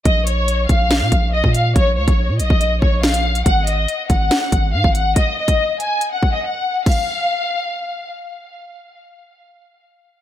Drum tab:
CC |--------------------------------|--------------------------------|--------------------------------|--------------------------------|
HH |x---x---x---x---x---x-------x---|x-----x-----x---x---------x---x-|x---x---x---x---x---x-------x---|x-----x-----x---x---------------|
SD |----------------o---------------|------------------------o-------|----------------o---------------|--------------------------------|
BD |o-----------o-------o-----o-----|o-----o-------o-----o-----------|o-----------o-------o-----o-----|o-----o-------------o-----------|

CC |x-------------------------------|--------------------------------|
HH |xx------------------------------|--------------------------------|
SD |--------------------------------|--------------------------------|
BD |o-------------------------------|--------------------------------|